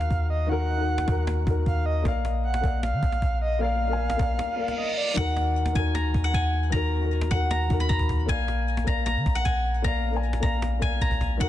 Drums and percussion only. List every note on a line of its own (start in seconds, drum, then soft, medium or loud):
0.01 cajon slap medium
0.10 cajon bass medium
0.23 cajon slap soft
0.49 cajon slap soft
0.88 cajon slap soft
0.98 cajon slap loud
1.08 cajon bass medium
1.08 cajon slap loud
1.27 cajon slap loud
1.47 cajon bass loud
1.66 cajon bass medium
1.76 cajon slap soft
2.05 cajon bass loud
2.25 cajon slap medium
2.44 cajon slap soft
2.54 cajon slap loud
2.64 cajon bass medium
2.83 cajon slap loud
3.03 cajon bass loud
3.12 cajon slap medium
3.22 cajon bass medium
3.29 cajon slap soft
3.35 cajon slap soft
3.61 cajon slap soft
3.81 cajon slap soft
3.87 cajon slap soft
3.94 cajon slap soft
4.00 cajon slap soft
4.10 cajon slap loud
4.19 cajon bass loud
4.19 cajon slap loud
4.39 cajon slap loud
4.58 cajon slap soft
4.63 cajon slap soft
4.68 cajon slap medium
4.73 cajon slap soft
4.78 cajon slap soft
4.84 cajon slap soft
4.91 cajon slap soft
5.17 cajon bass loud
5.37 cajon slap medium
5.56 cajon slap soft
5.66 cajon slap loud
5.75 cajon bass medium
5.95 cajon slap loud
6.14 cajon bass loud
6.34 cajon bass medium
6.53 cajon slap soft
6.73 cajon bass loud
7.21 cajon slap loud
7.31 cajon bass loud
7.31 cajon slap loud
7.51 cajon slap loud
7.70 cajon bass loud
7.80 cajon slap medium
7.90 cajon bass medium
7.96 cajon bass medium
7.96 cajon slap soft
8.03 cajon slap soft
8.09 cajon bass loud
8.29 cajon bass loud
8.48 cajon slap medium
8.67 cajon slap soft
8.77 cajon slap loud
8.87 cajon bass loud
9.07 cajon slap loud
9.26 cajon bass loud
9.46 cajon bass medium
9.65 cajon slap soft
9.85 cajon bass loud
10.04 cajon slap soft
10.10 cajon slap soft
10.17 cajon slap soft
10.33 cajon slap loud
10.43 cajon bass medium
10.43 cajon slap loud
10.62 cajon slap loud
10.82 cajon bass loud
11.01 cajon bass medium
11.11 cajon bass medium
11.21 cajon bass loud
11.26 cajon slap soft
11.31 cajon slap soft
11.35 cajon slap soft
11.40 cajon bass loud